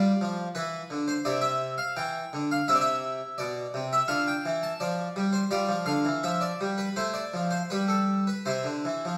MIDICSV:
0, 0, Header, 1, 2, 480
1, 0, Start_track
1, 0, Key_signature, 0, "major"
1, 0, Tempo, 709220
1, 1819, Time_signature, 4, 2, 24, 8
1, 3739, Tempo, 725514
1, 5179, Tempo, 771208
1, 6098, End_track
2, 0, Start_track
2, 0, Title_t, "Harpsichord"
2, 0, Program_c, 0, 6
2, 0, Note_on_c, 0, 55, 76
2, 0, Note_on_c, 0, 65, 47
2, 0, Note_on_c, 0, 74, 97
2, 73, Note_off_c, 0, 55, 0
2, 145, Note_on_c, 0, 53, 67
2, 306, Note_off_c, 0, 74, 0
2, 313, Note_off_c, 0, 53, 0
2, 372, Note_on_c, 0, 71, 97
2, 376, Note_on_c, 0, 52, 66
2, 548, Note_off_c, 0, 52, 0
2, 612, Note_on_c, 0, 50, 57
2, 677, Note_off_c, 0, 71, 0
2, 729, Note_on_c, 0, 72, 93
2, 785, Note_off_c, 0, 50, 0
2, 828, Note_off_c, 0, 65, 0
2, 847, Note_on_c, 0, 74, 108
2, 848, Note_on_c, 0, 48, 74
2, 848, Note_on_c, 0, 64, 42
2, 851, Note_off_c, 0, 72, 0
2, 957, Note_on_c, 0, 76, 97
2, 969, Note_off_c, 0, 74, 0
2, 1168, Note_off_c, 0, 76, 0
2, 1196, Note_off_c, 0, 48, 0
2, 1204, Note_on_c, 0, 77, 95
2, 1330, Note_off_c, 0, 77, 0
2, 1331, Note_on_c, 0, 79, 93
2, 1332, Note_on_c, 0, 52, 67
2, 1507, Note_off_c, 0, 52, 0
2, 1579, Note_on_c, 0, 50, 72
2, 1642, Note_off_c, 0, 79, 0
2, 1702, Note_on_c, 0, 77, 94
2, 1752, Note_off_c, 0, 50, 0
2, 1789, Note_off_c, 0, 64, 0
2, 1815, Note_on_c, 0, 64, 47
2, 1815, Note_on_c, 0, 76, 107
2, 1820, Note_off_c, 0, 77, 0
2, 1821, Note_on_c, 0, 48, 81
2, 1860, Note_on_c, 0, 74, 89
2, 1863, Note_off_c, 0, 76, 0
2, 1903, Note_on_c, 0, 76, 103
2, 1909, Note_off_c, 0, 74, 0
2, 2166, Note_off_c, 0, 48, 0
2, 2288, Note_on_c, 0, 74, 98
2, 2294, Note_off_c, 0, 76, 0
2, 2297, Note_on_c, 0, 47, 67
2, 2471, Note_off_c, 0, 47, 0
2, 2533, Note_on_c, 0, 48, 69
2, 2599, Note_off_c, 0, 74, 0
2, 2657, Note_on_c, 0, 76, 104
2, 2708, Note_off_c, 0, 48, 0
2, 2750, Note_off_c, 0, 64, 0
2, 2761, Note_on_c, 0, 77, 113
2, 2763, Note_on_c, 0, 65, 50
2, 2764, Note_on_c, 0, 50, 83
2, 2778, Note_off_c, 0, 76, 0
2, 2890, Note_off_c, 0, 77, 0
2, 2893, Note_on_c, 0, 79, 103
2, 2942, Note_off_c, 0, 50, 0
2, 3015, Note_on_c, 0, 52, 73
2, 3134, Note_on_c, 0, 81, 105
2, 3136, Note_off_c, 0, 79, 0
2, 3189, Note_off_c, 0, 52, 0
2, 3250, Note_on_c, 0, 74, 94
2, 3255, Note_on_c, 0, 53, 77
2, 3256, Note_off_c, 0, 81, 0
2, 3429, Note_off_c, 0, 53, 0
2, 3494, Note_on_c, 0, 55, 69
2, 3605, Note_on_c, 0, 72, 82
2, 3614, Note_off_c, 0, 74, 0
2, 3669, Note_off_c, 0, 55, 0
2, 3704, Note_off_c, 0, 65, 0
2, 3728, Note_on_c, 0, 55, 75
2, 3728, Note_on_c, 0, 74, 102
2, 3731, Note_on_c, 0, 65, 49
2, 3732, Note_off_c, 0, 72, 0
2, 3846, Note_on_c, 0, 53, 64
2, 3847, Note_off_c, 0, 55, 0
2, 3960, Note_on_c, 0, 50, 74
2, 3960, Note_on_c, 0, 77, 102
2, 3965, Note_off_c, 0, 53, 0
2, 3972, Note_off_c, 0, 74, 0
2, 4082, Note_off_c, 0, 50, 0
2, 4085, Note_on_c, 0, 52, 61
2, 4171, Note_off_c, 0, 77, 0
2, 4205, Note_off_c, 0, 52, 0
2, 4209, Note_on_c, 0, 76, 104
2, 4211, Note_on_c, 0, 53, 67
2, 4325, Note_on_c, 0, 74, 97
2, 4333, Note_off_c, 0, 76, 0
2, 4385, Note_off_c, 0, 53, 0
2, 4456, Note_on_c, 0, 55, 63
2, 4568, Note_on_c, 0, 71, 81
2, 4570, Note_off_c, 0, 74, 0
2, 4628, Note_off_c, 0, 55, 0
2, 4665, Note_off_c, 0, 65, 0
2, 4691, Note_off_c, 0, 71, 0
2, 4691, Note_on_c, 0, 64, 42
2, 4691, Note_on_c, 0, 72, 103
2, 4693, Note_on_c, 0, 57, 66
2, 4806, Note_on_c, 0, 74, 93
2, 4813, Note_off_c, 0, 72, 0
2, 4866, Note_off_c, 0, 57, 0
2, 4937, Note_on_c, 0, 53, 65
2, 5051, Note_on_c, 0, 72, 85
2, 5052, Note_off_c, 0, 74, 0
2, 5112, Note_off_c, 0, 53, 0
2, 5150, Note_off_c, 0, 64, 0
2, 5176, Note_off_c, 0, 72, 0
2, 5180, Note_on_c, 0, 71, 87
2, 5188, Note_on_c, 0, 55, 60
2, 5291, Note_on_c, 0, 69, 66
2, 5296, Note_off_c, 0, 71, 0
2, 5526, Note_off_c, 0, 55, 0
2, 5530, Note_off_c, 0, 69, 0
2, 5535, Note_on_c, 0, 71, 67
2, 5649, Note_on_c, 0, 72, 81
2, 5652, Note_on_c, 0, 48, 65
2, 5652, Note_on_c, 0, 64, 38
2, 5654, Note_off_c, 0, 71, 0
2, 5762, Note_on_c, 0, 50, 51
2, 5767, Note_off_c, 0, 48, 0
2, 5883, Note_off_c, 0, 50, 0
2, 5896, Note_on_c, 0, 52, 62
2, 6011, Note_off_c, 0, 52, 0
2, 6021, Note_on_c, 0, 53, 60
2, 6098, Note_off_c, 0, 53, 0
2, 6098, Note_off_c, 0, 64, 0
2, 6098, Note_off_c, 0, 72, 0
2, 6098, End_track
0, 0, End_of_file